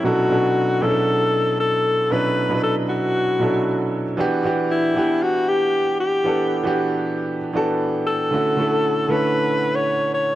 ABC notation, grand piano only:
X:1
M:4/4
L:1/16
Q:1/4=116
K:Edor
V:1 name="Grand piano"
[B,,F,CDEA]2 [B,,F,CDEA]3 z [B,,F,CDE^GA]6 z4 | [B,,F,CDEB]2 z [B,,F,CDEB]6 z [B,,F,CDEA]4- [B,,F,CDEA] z | [E,B,DFG]2 [E,B,DFG]3 z [E,B,DGf]6 z4 | [E,B,DAf]2 z [E,B,DFG]6 z [E,B,DFA]4- [E,B,DFA] z |
[D,A,CEF]2 [D,A,CEA]3 z [D,A,CEA]6 z4 |]